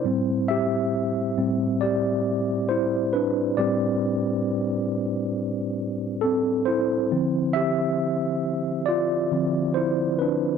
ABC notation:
X:1
M:4/4
L:1/8
Q:"Swing 16ths" 1/4=68
K:Am
V:1 name="Tine electric piano"
[Ec] [Ge]3 [Gd]2 [Ec] [DB] | [Gd]2 z4 [CA] [Ec]- | [Ec] [Ge]3 [Fd]2 [Ec] [DB] |]
V:2 name="Tine electric piano" clef=bass
[A,,G,C]3 [A,,G,C] z4 | [A,,G,C]8 | [D,F,C] z4 [D,F,C] z2 |]